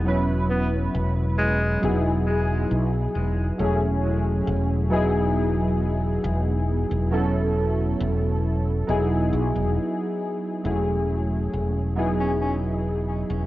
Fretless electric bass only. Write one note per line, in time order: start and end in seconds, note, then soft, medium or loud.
0.00 0.87 E1 medium
0.94 1.75 E1 loud
1.83 2.63 E1 loud
2.71 3.06 B1 medium
3.15 3.50 E1 medium
3.59 4.40 E1 loud
4.47 6.16 E1 loud
6.24 6.83 E1 loud
6.91 7.93 E1 medium
8.00 8.81 E1 loud
8.89 9.32 E1 loud
9.33 9.51 B1 loud
9.56 9.77 E1 medium
10.65 11.46 E1 medium
11.53 13.22 E1 loud
13.30 13.46 E1 medium